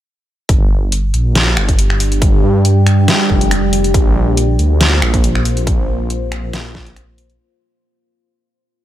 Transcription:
0.49 1.12 G1 medium
0.49 3.91 G3 medium
0.49 3.91 D4 medium
0.49 3.91 G4 medium
0.49 kick loud
0.49 closed hi-hat medium
0.92 closed hi-hat medium
1.14 1.55 A#1 loud
1.14 closed hi-hat medium
1.35 snare loud
1.35 closed hi-hat medium
1.57 2.42 G1 loud
1.57 finger snap medium
1.68 kick medium
1.68 closed hi-hat medium
1.79 closed hi-hat medium
1.90 finger snap medium
2.00 open hi-hat loud
2.12 closed hi-hat medium
2.22 kick loud
2.22 closed hi-hat medium
2.43 3.06 G2 medium
2.65 closed hi-hat medium
2.87 finger snap medium
2.87 closed hi-hat medium
3.08 snare loud
3.08 closed hi-hat medium
3.30 3.93 F1 loud
3.30 kick medium
3.41 closed hi-hat medium
3.51 finger snap medium
3.51 closed hi-hat medium
3.73 open hi-hat loud
3.84 closed hi-hat medium
3.94 4.57 A#1 medium
3.94 7.36 A#3 medium
3.94 7.36 F4 medium
3.94 7.36 C5 medium
3.94 kick loud
3.94 closed hi-hat medium
4.37 closed hi-hat medium
4.59 5.01 D2 loud
4.59 closed hi-hat medium
4.81 snare loud
4.81 closed hi-hat medium
5.02 5.87 A#1 loud
5.02 finger snap medium
5.14 kick medium
5.14 closed hi-hat medium
5.24 closed hi-hat medium
5.35 finger snap medium
5.45 open hi-hat medium
5.57 closed hi-hat medium
5.67 kick loud
5.67 closed hi-hat medium
5.88 6.52 A#1 loud
6.10 closed hi-hat medium
6.32 finger snap medium
6.32 closed hi-hat soft
6.53 7.38 A#1 loud
6.53 snare loud
6.53 closed hi-hat medium
6.75 kick medium
6.75 snare medium
6.86 closed hi-hat medium
6.96 finger snap medium
6.96 closed hi-hat medium
7.18 open hi-hat medium
7.30 closed hi-hat medium

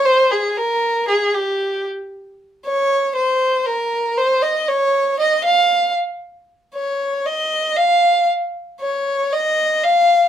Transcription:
0.05 0.33 C5 medium
0.31 0.59 G#4 medium
0.57 1.07 A#4 medium
1.08 1.35 G#4 medium
1.34 1.85 G4 medium
2.65 3.11 C#5 medium
3.15 3.68 C5 medium
3.66 4.19 A#4 medium
4.18 4.44 C5 medium
4.42 4.70 D#5 medium
4.68 5.19 C#5 medium
5.19 5.43 D#5 medium
5.44 5.92 F5 medium
6.74 7.27 C#5 medium
7.26 7.78 D#5 medium
7.76 8.28 F5 medium
8.80 9.34 C#5 medium
9.33 9.85 D#5 medium
9.83 10.29 F5 medium

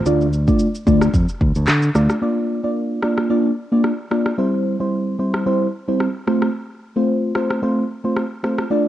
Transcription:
0.06 0.47 D2 loud
0.06 0.27 A3 medium
0.06 0.27 D4 medium
0.06 0.27 F4 medium
0.06 0.27 D5 loud
0.06 shaker medium
0.21 shaker medium
0.33 shaker medium
0.48 0.67 A3 medium
0.48 0.67 D4 medium
0.48 0.67 F4 medium
0.48 0.68 D5 medium
0.48 kick loud
0.48 shaker medium
0.59 shaker medium
0.75 shaker medium
0.87 1.08 D2 loud
0.87 1.08 A3 medium
0.87 1.08 D4 medium
0.87 1.08 F4 medium
0.87 1.08 D5 medium
0.87 kick medium
0.87 shaker medium
1.01 cross-stick loud
1.01 shaker medium
1.14 1.25 F2 medium
1.14 kick loud
1.14 shaker medium
1.29 shaker soft
1.41 1.52 D2 medium
1.41 kick medium
1.55 1.65 D2 medium
1.55 shaker soft
1.67 1.89 D3 medium
1.67 cross-stick medium
1.67 clap loud
1.67 shaker medium
1.82 shaker medium
1.95 2.06 D2 medium
1.95 2.16 A3 medium
1.95 2.16 D4 medium
1.95 2.16 F4 medium
1.95 2.16 D5 medium
1.95 cross-stick medium
1.95 shaker medium
2.10 cross-stick medium
2.10 shaker soft
2.22 2.60 A#3 medium
2.22 2.60 D4 medium
2.22 2.60 F4 medium
2.22 2.60 D5 medium
2.64 3.00 A#3 medium
2.64 3.00 D4 medium
2.64 3.00 F4 medium
2.64 3.00 D5 medium
3.03 3.28 A#3 medium
3.03 3.28 D4 medium
3.03 3.28 F4 medium
3.03 3.28 D5 medium
3.03 cross-stick medium
3.18 cross-stick medium
3.30 3.51 A#3 medium
3.30 3.51 D4 medium
3.30 3.51 F4 medium
3.30 3.51 D5 medium
3.72 3.91 A#3 medium
3.72 3.92 D4 medium
3.72 3.92 F4 medium
3.72 3.92 D5 medium
3.84 cross-stick medium
4.11 4.32 A#3 medium
4.11 4.32 D4 medium
4.11 4.32 F4 medium
4.11 4.32 D5 medium
4.11 cross-stick medium
4.26 cross-stick medium
4.38 4.76 G3 medium
4.38 4.76 C4 medium
4.38 4.77 E4 medium
4.38 4.77 C5 medium
4.80 5.16 G3 medium
4.80 5.16 C4 medium
4.80 5.16 E4 medium
4.80 5.17 C5 medium
5.19 5.44 G3 medium
5.19 5.44 C4 medium
5.19 5.44 E4 medium
5.19 5.45 C5 medium
5.34 cross-stick medium
5.46 5.67 G3 medium
5.46 5.67 C4 medium
5.46 5.67 E4 medium
5.46 5.67 C5 loud
5.88 6.08 G3 medium
5.88 6.08 C4 medium
5.88 6.08 E4 medium
5.88 6.08 C5 medium
6.00 cross-stick medium
6.27 6.48 A3 medium
6.27 6.48 C4 medium
6.27 6.48 F4 medium
6.27 6.48 C5 medium
6.27 cross-stick medium
6.42 cross-stick medium
6.96 7.32 A3 medium
6.96 7.32 C4 medium
6.96 7.33 F4 medium
6.96 7.33 C5 medium
7.35 7.60 A3 medium
7.35 7.61 C4 medium
7.35 7.61 F4 medium
7.35 7.61 C5 medium
7.35 cross-stick loud
7.50 cross-stick medium
7.62 7.83 A3 medium
7.62 7.83 C4 medium
7.62 7.83 F4 medium
7.62 7.84 C5 loud
8.04 8.24 A3 medium
8.04 8.24 C4 medium
8.04 8.24 F4 medium
8.04 8.24 C5 medium
8.16 cross-stick medium
8.43 8.64 A3 medium
8.43 8.65 C4 medium
8.43 8.65 F4 medium
8.43 8.65 C5 medium
8.43 cross-stick medium
8.58 cross-stick medium
8.70 8.88 A3 medium
8.70 8.88 D4 medium
8.70 8.88 F4 medium
8.70 8.88 D5 medium

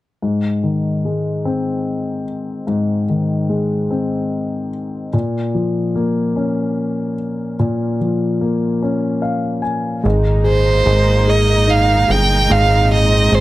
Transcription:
0.23 2.64 G#2 soft
0.63 2.23 D#3 soft
1.05 2.64 G#3 soft
1.45 3.05 C4 soft
2.67 5.09 G#2 soft
3.09 4.69 D#3 soft
3.49 5.09 G#3 soft
3.90 5.10 C4 soft
5.13 7.55 A#2 soft
5.55 7.14 F3 soft
5.95 7.55 A#3 soft
6.36 7.96 C#4 soft
7.59 10.01 A#2 soft
8.01 9.61 F3 soft
8.41 10.01 A#3 soft
8.82 10.02 C#4 soft
9.22 9.61 F5 soft
9.62 10.01 G#5 soft
10.03 10.83 G#1 medium
10.03 13.40 A#2 medium
10.03 10.84 G#3 soft
10.03 13.40 G#3 soft
10.03 12.48 A#3 medium
10.03 13.40 D#4 medium
10.44 11.26 G#4 soft
10.44 11.31 C5 medium
10.86 12.06 G#1 medium
10.86 12.46 G#3 soft
11.27 12.06 G#4 soft
11.27 11.71 D#5 medium
11.67 13.28 D#4 soft
11.67 12.12 F5 medium
12.08 12.48 G1 medium
12.08 12.90 G#4 soft
12.08 12.53 G5 medium
12.50 13.29 G#1 loud
12.50 13.30 G#3 soft
12.50 13.40 C4 soft
12.50 12.92 F5 medium
12.91 13.40 G#4 soft
12.91 13.36 D#5 medium
13.32 13.40 G#1 medium
13.32 13.40 G#3 soft
13.32 13.40 C5 medium

